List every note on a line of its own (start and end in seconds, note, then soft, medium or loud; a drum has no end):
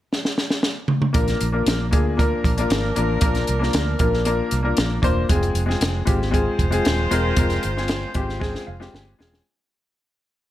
0.13 snare medium
0.25 snare medium
0.38 snare medium
0.50 snare medium
0.63 snare medium
0.88 mid tom medium
1.02 mid tom medium
1.13 1.35 A#1 medium
1.13 1.45 A#3 medium
1.13 1.45 D4 medium
1.13 1.45 F4 medium
1.13 1.46 A#4 medium
1.13 kick loud
1.13 closed hi-hat loud
1.28 snare soft
1.28 closed hi-hat soft
1.41 1.61 A#1 medium
1.41 closed hi-hat medium
1.52 1.84 A#3 medium
1.52 1.84 D4 medium
1.52 1.84 F4 medium
1.52 1.84 A#4 medium
1.66 1.93 A#1 medium
1.66 snare loud
1.66 closed hi-hat medium
1.91 2.33 D2 medium
1.91 2.12 A#3 medium
1.91 2.13 D4 medium
1.91 2.13 F4 medium
1.91 2.13 G#4 medium
1.91 kick loud
1.91 closed hi-hat medium
2.17 4.99 F3 medium
2.17 2.48 A#3 medium
2.17 4.99 D4 medium
2.17 2.49 D4 medium
2.17 2.49 F4 medium
2.17 4.99 A#4 medium
2.17 2.50 A#4 medium
2.17 kick medium
2.17 closed hi-hat medium
2.44 2.65 A#1 medium
2.44 kick medium
2.44 closed hi-hat medium
2.57 2.88 A#3 medium
2.57 2.89 D4 medium
2.57 2.89 F4 medium
2.57 2.89 A#4 medium
2.57 closed hi-hat soft
2.70 2.90 G#1 medium
2.70 snare loud
2.70 closed hi-hat medium
2.96 3.17 A1 medium
2.96 3.16 A#3 medium
2.96 3.17 D4 medium
2.96 3.17 F4 medium
2.96 3.17 A#4 medium
2.96 closed hi-hat medium
3.21 3.42 A#1 medium
3.21 3.52 A#3 medium
3.21 3.53 D4 medium
3.21 3.53 F4 medium
3.21 3.53 A#4 medium
3.21 kick loud
3.21 closed hi-hat loud
3.35 snare soft
3.35 closed hi-hat soft
3.47 3.68 C2 medium
3.47 closed hi-hat medium
3.59 3.91 A#3 medium
3.59 3.91 D4 medium
3.59 3.92 F4 medium
3.59 3.92 A#4 medium
3.59 snare soft
3.73 3.94 D2 medium
3.73 snare loud
3.73 closed hi-hat medium
3.99 4.40 A#1 medium
3.99 4.20 A#3 medium
3.99 4.20 D4 medium
3.99 4.20 F4 medium
3.99 4.21 A#4 medium
3.99 kick medium
3.99 closed hi-hat medium
4.13 snare soft
4.25 4.56 A#3 medium
4.25 4.56 D4 medium
4.25 4.57 F4 medium
4.25 4.57 A#4 medium
4.25 closed hi-hat medium
4.51 4.72 C2 medium
4.51 closed hi-hat medium
4.63 4.94 A#3 medium
4.63 4.95 D4 medium
4.63 4.95 F4 medium
4.63 4.95 A#4 medium
4.77 4.98 A#1 medium
4.77 snare loud
4.77 closed hi-hat medium
5.02 5.23 E1 medium
5.02 5.23 A#3 medium
5.02 5.23 D4 medium
5.02 5.24 F4 medium
5.02 5.24 C5 medium
5.02 kick medium
5.02 closed hi-hat medium
5.29 5.50 F1 medium
5.29 5.60 G#3 medium
5.29 5.60 C4 medium
5.29 5.61 F4 medium
5.29 5.61 G#4 medium
5.29 kick loud
5.29 closed hi-hat loud
5.43 closed hi-hat soft
5.54 5.75 F1 medium
5.54 closed hi-hat medium
5.66 5.98 G#3 medium
5.66 5.98 C4 medium
5.66 5.99 F4 medium
5.66 5.99 G#4 medium
5.66 snare soft
5.81 6.01 F1 medium
5.81 snare loud
5.81 closed hi-hat medium
6.05 6.47 G#1 medium
6.05 6.27 G#3 medium
6.05 6.27 C4 medium
6.05 6.27 F4 medium
6.05 6.27 G4 medium
6.05 kick medium
6.05 closed hi-hat medium
6.22 snare soft
6.31 6.63 G#3 medium
6.31 9.16 G#3 medium
6.31 6.63 C4 medium
6.31 6.63 F4 medium
6.31 9.16 F4 medium
6.31 6.64 G#4 medium
6.31 9.16 C5 medium
6.31 kick medium
6.31 closed hi-hat medium
6.59 6.79 F1 medium
6.59 kick medium
6.59 closed hi-hat medium
6.71 7.02 G#3 medium
6.71 7.03 C4 medium
6.71 7.03 F4 medium
6.71 7.03 G#4 medium
6.71 closed hi-hat medium
6.85 7.06 D#1 medium
6.85 snare loud
6.85 closed hi-hat medium
7.11 7.31 E1 medium
7.11 7.31 G#3 medium
7.11 7.32 C4 medium
7.11 7.32 F4 medium
7.11 7.32 A#4 medium
7.11 closed hi-hat medium
7.37 7.57 F1 medium
7.37 7.68 G#3 medium
7.37 7.68 C4 medium
7.37 7.69 F4 medium
7.37 7.69 A#4 medium
7.37 kick loud
7.37 closed hi-hat loud
7.50 snare soft
7.50 closed hi-hat soft
7.63 8.04 G1 medium
7.63 closed hi-hat medium
7.77 8.08 G#3 medium
7.77 8.08 C4 medium
7.77 8.08 F4 medium
7.77 8.08 G#4 medium
7.77 snare soft
7.88 snare loud
7.88 closed hi-hat medium
8.14 8.55 G#1 medium
8.14 8.35 G#3 medium
8.14 8.35 C4 medium
8.14 8.36 F4 medium
8.14 8.36 G4 medium
8.14 kick medium
8.14 closed hi-hat medium
8.29 snare soft
8.40 8.71 G#3 medium
8.40 8.72 C4 medium
8.40 8.72 F4 medium
8.40 8.72 G#4 medium
8.40 kick medium
8.40 snare soft
8.55 snare soft
8.67 8.88 F1 medium
8.67 8.91 F5 medium
8.80 9.11 G#3 medium
8.80 9.11 C4 medium
8.80 9.11 F4 medium
8.80 9.12 G4 medium
8.80 snare medium
8.94 9.13 G1 medium
8.94 9.42 G#5 medium
8.94 snare medium
9.19 9.40 E1 medium
9.19 9.40 G#3 medium
9.19 9.40 C4 medium
9.19 9.40 F4 medium
9.19 9.40 G#4 medium
9.19 snare medium
9.34 snare medium